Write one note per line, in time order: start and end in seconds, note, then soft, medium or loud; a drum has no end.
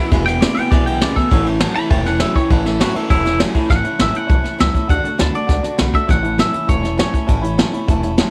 0.00 0.10 B2 medium
0.00 0.11 E3 soft
0.00 0.12 G#3 medium
0.00 0.12 B3 medium
0.00 0.11 E4 medium
0.11 0.43 E1 medium
0.11 0.25 E2 medium
0.11 0.27 E2 medium
0.11 0.25 B2 loud
0.11 0.27 B2 medium
0.11 0.27 E3 medium
0.11 0.27 G#3 loud
0.11 0.26 B3 medium
0.11 0.25 E4 loud
0.11 0.21 B4 loud
0.11 0.21 E5 loud
0.11 0.21 G#5 loud
0.11 kick loud
0.11 snare soft
0.11 ride medium
0.26 0.40 E2 medium
0.26 0.40 B2 medium
0.26 0.41 E3 soft
0.26 0.41 G#3 soft
0.26 0.41 B3 medium
0.26 0.36 B4 medium
0.26 0.36 E5 medium
0.26 0.41 G5 loud
0.26 0.36 G#5 medium
0.26 snare soft
0.26 ride medium
0.40 0.56 E2 medium
0.40 0.55 E2 medium
0.40 0.56 B2 medium
0.40 0.55 C#3 loud
0.40 0.57 E3 medium
0.40 0.57 G#3 medium
0.40 0.57 B3 medium
0.40 0.56 E4 medium
0.40 0.51 B4 medium
0.40 0.56 D5 medium
0.40 0.51 E5 medium
0.40 0.51 B5 medium
0.40 snare loud
0.40 ride medium
0.55 0.70 E2 medium
0.55 0.70 B2 medium
0.55 0.71 G#3 medium
0.55 0.72 B3 medium
0.55 0.72 E4 medium
0.55 0.66 B4 medium
0.55 0.66 E5 medium
0.55 0.70 G5 medium
0.55 0.66 G#5 medium
0.55 muted upright bass stroke medium
0.55 ride medium
0.59 0.70 E3 soft
0.71 1.03 B1 medium
0.71 0.85 E2 loud
0.71 0.85 B2 loud
0.71 0.86 E3 medium
0.71 0.87 G#3 medium
0.71 0.86 B3 medium
0.71 0.86 E4 medium
0.71 0.81 B4 medium
0.71 0.86 D5 loud
0.71 0.80 E5 medium
0.71 0.81 G#5 loud
0.71 kick loud
0.71 snare soft
0.71 ride medium
0.86 1.00 E2 medium
0.86 1.00 B2 medium
0.86 1.00 E3 soft
0.86 1.00 G#3 soft
0.86 1.01 B3 soft
0.86 1.01 E4 medium
0.86 0.96 B4 medium
0.86 0.96 E5 medium
0.86 1.01 G5 loud
0.86 ride medium
1.01 1.16 E2 medium
1.01 1.15 E2 medium
1.01 1.16 B2 medium
1.01 1.15 C#3 medium
1.01 1.16 E3 medium
1.01 1.16 G#3 medium
1.01 1.15 B3 loud
1.01 1.14 E4 loud
1.01 1.11 B4 medium
1.01 1.16 D5 medium
1.01 1.11 E5 medium
1.01 1.11 G#5 medium
1.01 snare loud
1.01 ride medium
1.15 1.30 E2 medium
1.15 1.30 B2 medium
1.15 1.30 E3 soft
1.15 1.31 G#3 medium
1.15 1.31 B3 medium
1.15 1.31 E4 medium
1.15 1.45 A4 loud
1.15 1.25 B4 medium
1.15 1.26 E5 medium
1.15 1.26 G#5 medium
1.15 muted upright bass stroke medium
1.15 kick medium
1.15 ride medium
1.31 1.63 A1 loud
1.31 1.46 A2 medium
1.31 1.44 A2 medium
1.31 1.46 E3 medium
1.31 1.45 E3 loud
1.31 1.46 A3 medium
1.31 1.45 C#4 medium
1.31 1.43 E4 medium
1.31 1.40 C#5 loud
1.31 1.40 E5 medium
1.31 1.40 A5 medium
1.31 kick loud
1.31 ride medium
1.45 1.59 A2 medium
1.45 1.60 E3 medium
1.45 1.59 A3 soft
1.45 1.60 C#4 soft
1.45 1.60 E4 medium
1.45 1.55 C#5 medium
1.45 1.56 E5 medium
1.45 1.56 A5 medium
1.45 ride medium
1.59 1.75 A2 medium
1.59 1.74 A2 medium
1.59 1.76 E3 loud
1.59 1.74 F#3 loud
1.59 1.76 A3 loud
1.59 1.75 C#4 loud
1.59 1.73 E4 medium
1.59 1.69 C#5 medium
1.59 1.70 E5 medium
1.59 1.70 A5 loud
1.59 snare loud
1.59 ride medium
1.74 1.89 A2 medium
1.74 1.90 E3 medium
1.74 1.90 A3 soft
1.74 1.90 C#4 medium
1.74 1.90 E4 medium
1.74 1.85 C#5 medium
1.74 1.85 E5 medium
1.74 1.90 B5 loud
1.74 muted upright bass stroke medium
1.74 ride medium
1.90 2.22 E1 medium
1.90 2.04 A2 medium
1.90 2.05 E3 medium
1.90 2.04 E3 loud
1.90 2.06 A3 medium
1.90 2.06 C#4 medium
1.90 2.04 E4 medium
1.90 1.99 C#5 medium
1.90 2.00 E5 medium
1.90 1.99 G5 loud
1.90 2.05 A5 loud
1.90 kick loud
1.90 ride medium
2.05 2.19 A2 medium
2.05 2.20 E3 medium
2.05 2.21 A3 soft
2.05 2.21 C#4 medium
2.05 2.20 E4 medium
2.05 2.15 C#5 medium
2.05 2.15 E5 medium
2.05 2.20 F#5 loud
2.05 2.15 A5 medium
2.05 snare soft
2.05 ride medium
2.20 2.36 A2 medium
2.20 2.34 A2 medium
2.20 2.36 E3 loud
2.20 2.35 F#3 loud
2.20 2.35 A3 medium
2.20 2.34 C#4 medium
2.20 2.33 E4 medium
2.20 2.29 C#5 medium
2.20 2.35 E5 medium
2.20 2.29 E5 medium
2.20 2.29 B5 medium
2.20 snare loud
2.20 ride medium
2.34 2.49 A2 medium
2.34 2.49 E3 medium
2.34 2.50 A3 soft
2.34 2.50 C#4 medium
2.34 2.50 E4 medium
2.34 2.51 C#5 medium
2.34 2.45 C#5 medium
2.34 2.44 E5 medium
2.34 2.45 G5 medium
2.34 muted upright bass stroke medium
2.34 kick medium
2.34 ride medium
2.50 2.82 A1 loud
2.50 2.65 A2 medium
2.50 2.64 A2 medium
2.50 2.65 E3 medium
2.50 2.64 E3 loud
2.50 2.65 A3 medium
2.50 2.65 C#4 loud
2.50 2.63 E4 loud
2.50 2.66 B4 loud
2.50 2.59 C#5 medium
2.50 2.60 E5 medium
2.50 2.59 A5 loud
2.50 kick loud
2.50 ride medium
2.65 2.79 A2 medium
2.65 2.79 E3 medium
2.65 2.80 A3 soft
2.65 2.80 C#4 medium
2.65 2.80 E4 medium
2.65 2.80 A4 medium
2.65 2.74 C#5 medium
2.65 2.75 E5 medium
2.65 2.74 A5 medium
2.65 snare soft
2.65 ride medium
2.79 2.95 A2 medium
2.79 2.94 A2 medium
2.79 2.95 E3 medium
2.79 2.94 F#3 loud
2.79 2.95 A3 medium
2.79 2.95 C#4 loud
2.79 2.94 E4 loud
2.79 2.96 F#4 medium
2.79 2.89 C#5 medium
2.79 2.89 E5 medium
2.79 2.89 A5 medium
2.79 snare loud
2.79 ride medium
2.94 3.08 A2 medium
2.94 3.09 E3 medium
2.94 3.10 A3 medium
2.94 3.10 C#4 medium
2.94 3.10 E4 medium
2.94 3.09 E4 medium
2.94 3.03 C#5 medium
2.94 3.03 E5 medium
2.94 3.04 A5 medium
2.94 muted upright bass stroke medium
2.94 ride medium
3.09 3.41 E1 medium
3.09 3.24 A2 medium
3.09 3.25 E3 medium
3.09 3.24 E3 loud
3.09 3.25 A3 medium
3.09 3.25 C#4 medium
3.09 3.39 E4 loud
3.09 3.24 E4 medium
3.09 3.18 C#5 medium
3.09 3.18 E5 medium
3.09 3.19 A5 loud
3.09 kick loud
3.09 snare soft
3.09 ride medium
3.24 3.38 A2 medium
3.24 3.39 E3 medium
3.24 3.40 A3 soft
3.24 3.40 C#4 soft
3.24 3.40 E4 medium
3.24 3.33 C#5 medium
3.24 3.33 E5 medium
3.24 3.34 A5 medium
3.24 snare soft
3.24 ride medium
3.38 3.55 A2 medium
3.38 3.53 A2 medium
3.38 3.55 E3 loud
3.38 3.54 F#3 medium
3.38 3.55 A3 medium
3.38 3.55 C#4 medium
3.38 3.53 E4 loud
3.38 3.48 C#5 medium
3.38 3.48 E5 medium
3.38 3.48 A5 medium
3.38 snare loud
3.38 ride medium
3.54 3.68 A2 medium
3.54 3.69 E3 loud
3.54 3.69 A3 medium
3.54 3.70 C#4 medium
3.54 3.70 E4 medium
3.54 3.64 C#5 medium
3.54 3.64 E5 medium
3.54 3.64 A5 loud
3.54 muted upright bass stroke medium
3.54 kick medium
3.54 ride medium
3.69 3.80 A1 medium
3.69 3.83 A2 medium
3.69 3.85 A2 medium
3.69 3.83 E3 medium
3.69 3.85 E3 medium
3.69 3.85 A3 medium
3.69 3.84 C#4 medium
3.69 3.83 E4 medium
3.69 3.78 C#5 medium
3.69 3.78 E5 medium
3.69 4.01 F#5 medium
3.69 kick loud
3.69 snare soft
3.69 closed hi-hat medium
3.84 3.98 A2 medium
3.84 3.98 E3 medium
3.84 3.99 A3 soft
3.84 3.99 C#4 medium
3.84 3.99 E4 medium
3.84 3.93 C#5 medium
3.84 3.93 E5 medium
3.84 3.94 A5 medium
3.84 muted upright bass stroke medium
3.84 closed hi-hat medium
3.98 4.12 A1 medium
3.98 4.14 A2 medium
3.98 4.13 A2 medium
3.98 4.14 E3 medium
3.98 4.13 F#3 medium
3.98 4.15 A3 medium
3.98 4.13 C#4 medium
3.98 4.12 E4 medium
3.98 4.08 C#5 medium
3.98 4.08 E5 medium
3.98 4.16 E5 medium
3.98 4.08 A5 medium
3.98 snare loud
3.98 closed hi-hat medium
4.12 4.28 A2 medium
4.12 4.28 E3 medium
4.12 4.28 A3 soft
4.12 4.29 C#4 soft
4.12 4.29 E4 medium
4.12 4.22 C#5 medium
4.12 4.22 E5 medium
4.12 4.60 F#5 medium
4.12 4.23 A5 medium
4.12 muted upright bass stroke medium
4.12 closed hi-hat medium
4.27 4.42 B1 medium
4.27 4.42 A2 medium
4.27 4.44 E3 medium
4.27 4.43 E3 medium
4.27 4.44 A3 medium
4.27 4.44 C#4 medium
4.27 4.37 C#5 medium
4.27 4.37 E5 medium
4.27 4.37 A5 loud
4.27 kick loud
4.27 closed hi-hat medium
4.31 4.43 E4 medium
4.43 4.58 A2 medium
4.43 4.58 E3 medium
4.43 4.58 A3 soft
4.43 4.59 C#4 soft
4.43 4.59 E4 medium
4.43 4.52 E5 medium
4.43 muted upright bass stroke medium
4.43 snare soft
4.43 closed hi-hat medium
4.58 4.73 C#2 medium
4.58 4.74 A2 medium
4.58 4.73 A2 medium
4.58 4.74 E3 medium
4.58 4.73 F#3 medium
4.58 4.74 A3 medium
4.58 4.74 C#4 medium
4.58 4.73 E4 medium
4.58 4.68 C#5 medium
4.58 4.68 E5 medium
4.58 4.90 E5 medium
4.58 4.68 A5 medium
4.58 snare medium
4.58 closed hi-hat medium
4.73 4.88 A2 medium
4.73 4.88 E3 medium
4.73 4.89 A3 soft
4.73 4.90 C#4 soft
4.73 4.89 E4 medium
4.73 4.83 C#5 medium
4.73 4.83 E5 medium
4.73 4.83 A5 medium
4.73 kick medium
4.73 closed hi-hat medium
4.87 5.00 D2 medium
4.87 5.02 D3 medium
4.87 5.04 D3 medium
4.87 5.03 A3 medium
4.87 5.04 A3 medium
4.87 5.04 D4 medium
4.87 5.02 F#4 medium
4.87 4.97 D5 medium
4.87 4.97 F#5 medium
4.87 5.20 F#5 loud
4.87 4.97 A5 medium
4.87 kick loud
4.87 closed hi-hat medium
5.03 5.17 D3 medium
5.03 5.18 A3 medium
5.03 5.18 A3 soft
5.03 5.18 D4 soft
5.03 5.19 F#4 medium
5.03 5.13 D5 medium
5.03 muted upright bass stroke medium
5.03 closed hi-hat medium
5.18 5.32 D2 medium
5.18 5.34 D3 medium
5.18 5.32 D3 medium
5.18 5.34 A3 medium
5.18 5.32 B3 medium
5.18 5.34 D4 medium
5.18 5.33 F#4 medium
5.18 5.28 D5 medium
5.18 5.28 F#5 medium
5.18 5.35 A5 medium
5.18 5.28 B5 medium
5.18 snare loud
5.18 closed hi-hat medium
5.33 5.47 D3 medium
5.33 5.48 A3 medium
5.33 5.47 A3 soft
5.33 5.48 D4 soft
5.33 5.49 F#4 medium
5.33 5.42 D5 medium
5.33 5.76 D5 medium
5.33 5.43 F#5 medium
5.33 5.43 A5 medium
5.33 closed hi-hat medium
5.47 5.62 C#2 medium
5.47 5.63 D3 medium
5.47 5.62 D3 medium
5.47 5.64 A3 medium
5.47 5.62 A3 loud
5.47 5.64 D4 medium
5.47 5.62 F#4 medium
5.47 5.57 D5 medium
5.47 5.57 F#5 medium
5.47 5.57 A5 medium
5.47 kick loud
5.47 snare soft
5.47 closed hi-hat medium
5.63 5.77 D3 medium
5.63 5.77 A3 medium
5.63 5.78 A3 soft
5.63 5.78 D4 soft
5.63 5.79 F#4 soft
5.63 5.72 D5 medium
5.63 5.72 A5 medium
5.63 muted upright bass stroke medium
5.63 snare soft
5.63 closed hi-hat medium
5.77 5.92 B1 medium
5.77 5.93 D3 loud
5.77 5.92 D3 medium
5.77 5.94 A3 loud
5.77 5.92 B3 medium
5.77 5.94 D4 loud
5.77 5.92 F#4 medium
5.77 5.87 D5 medium
5.77 5.87 F#5 medium
5.77 5.87 B5 medium
5.77 snare loud
5.77 closed hi-hat medium
5.93 6.07 D3 medium
5.93 6.07 A3 medium
5.93 6.08 A3 soft
5.93 6.09 D4 medium
5.93 6.09 F#4 medium
5.93 6.02 D5 medium
5.93 6.08 E5 medium
5.93 6.02 F#5 medium
5.93 6.02 A5 medium
5.93 muted upright bass stroke medium
5.93 kick medium
5.93 closed hi-hat medium
6.07 6.40 A1 medium
6.07 6.22 A2 medium
6.07 6.24 A2 medium
6.07 6.22 E3 medium
6.07 6.24 E3 medium
6.07 6.24 A3 medium
6.07 6.23 C#4 medium
6.07 6.22 E4 medium
6.07 6.17 C#5 medium
6.07 6.17 E5 medium
6.07 6.38 F#5 loud
6.07 6.17 A5 medium
6.07 kick loud
6.07 snare soft
6.07 closed hi-hat medium
6.23 6.37 A2 medium
6.23 6.37 E3 medium
6.23 6.38 A3 soft
6.23 6.38 C#4 soft
6.23 6.38 E4 soft
6.23 6.32 C#5 medium
6.23 6.32 E5 medium
6.23 6.32 A5 medium
6.23 closed hi-hat medium
6.38 6.52 A2 medium
6.38 6.53 A2 medium
6.38 6.54 E3 medium
6.38 6.52 F#3 loud
6.38 6.54 A3 medium
6.38 6.53 C#4 medium
6.38 6.52 E4 medium
6.38 6.47 C#5 medium
6.38 6.48 E5 medium
6.38 6.67 E5 medium
6.38 6.48 A5 medium
6.38 snare medium
6.38 closed hi-hat medium
6.52 6.67 A2 medium
6.52 6.67 E3 medium
6.52 6.68 A3 soft
6.52 6.68 C#4 soft
6.52 6.68 E4 medium
6.52 6.62 C#5 medium
6.52 6.62 E5 medium
6.52 6.62 A5 medium
6.52 muted upright bass stroke medium
6.52 closed hi-hat medium
6.67 7.00 E1 medium
6.67 6.82 A2 medium
6.67 6.83 E3 medium
6.67 6.82 E3 medium
6.67 6.84 A3 medium
6.67 6.83 C#4 medium
6.67 6.81 E4 medium
6.67 6.77 C#5 medium
6.67 6.97 C#5 medium
6.67 6.77 E5 medium
6.67 6.77 A5 medium
6.67 kick loud
6.67 closed hi-hat medium
6.82 6.96 A2 medium
6.82 6.97 E3 medium
6.82 6.97 A3 soft
6.82 6.98 C#4 soft
6.82 6.98 E4 medium
6.82 6.92 C#5 medium
6.82 6.92 E5 medium
6.82 6.92 A5 medium
6.82 snare soft
6.82 closed hi-hat medium
6.97 7.11 A2 medium
6.97 7.13 A2 medium
6.97 7.13 E3 medium
6.97 7.12 F#3 medium
6.97 7.14 A3 medium
6.97 7.13 C#4 medium
6.97 7.12 E4 medium
6.97 7.07 C#5 medium
6.97 7.85 C#5 medium
6.97 7.07 E5 medium
6.97 7.07 A5 medium
6.97 snare loud
6.97 closed hi-hat medium
7.12 7.27 A2 medium
7.12 7.27 E3 medium
7.12 7.28 A3 soft
7.12 7.28 C#4 soft
7.12 7.28 E4 medium
7.12 7.22 C#5 medium
7.12 7.22 E5 medium
7.12 7.22 A5 medium
7.12 muted upright bass stroke medium
7.12 kick medium
7.12 closed hi-hat medium
7.27 7.60 A1 medium
7.27 7.43 A2 medium
7.27 7.41 A2 medium
7.27 7.43 E3 medium
7.27 7.42 E3 medium
7.27 7.44 A3 medium
7.27 7.43 C#4 medium
7.27 7.42 E4 medium
7.27 7.36 C#5 medium
7.27 7.37 E5 medium
7.27 7.37 A5 loud
7.27 kick loud
7.27 closed hi-hat medium
7.41 7.56 A2 medium
7.41 7.57 E3 medium
7.41 7.58 C#4 medium
7.41 7.58 E4 medium
7.41 7.51 C#5 medium
7.41 7.51 E5 medium
7.41 7.51 B5 loud
7.41 closed hi-hat medium
7.46 7.58 A3 soft
7.57 7.71 A2 medium
7.57 7.73 A2 medium
7.57 7.73 E3 medium
7.57 7.72 F#3 loud
7.57 7.74 A3 loud
7.57 7.74 C#4 loud
7.57 7.72 E4 loud
7.57 7.67 C#5 medium
7.57 7.67 E5 medium
7.57 7.67 A5 medium
7.57 snare loud
7.57 closed hi-hat medium
7.72 7.86 A2 medium
7.72 7.86 E3 medium
7.72 7.88 A3 medium
7.72 7.88 C#4 medium
7.72 7.88 E4 medium
7.72 7.82 C#5 medium
7.72 7.82 E5 medium
7.72 7.82 B5 medium
7.72 muted upright bass stroke medium
7.72 closed hi-hat medium
7.87 8.20 E1 medium
7.87 8.01 A2 medium
7.87 8.03 E3 medium
7.87 8.02 E3 loud
7.87 8.04 A3 medium
7.87 8.03 C#4 medium
7.87 8.01 E4 medium
7.87 7.97 C#5 loud
7.87 7.97 E5 medium
7.87 7.97 A5 loud
7.87 kick loud
7.87 closed hi-hat medium
8.02 8.16 A2 medium
8.02 8.17 E3 medium
8.02 8.17 A3 soft
8.02 8.17 C#4 medium
8.02 8.18 E4 medium
8.02 8.12 C#5 medium
8.02 8.12 E5 medium
8.02 8.12 A5 medium
8.02 closed hi-hat medium
8.17 8.30 A2 medium
8.17 8.30 E3 medium
8.17 8.30 F#3 medium
8.17 8.30 A3 loud
8.17 8.30 C#4 medium
8.17 8.30 E4 medium
8.17 8.27 C#5 medium
8.17 8.27 E5 medium
8.17 8.27 A5 medium
8.17 snare medium
8.17 closed hi-hat medium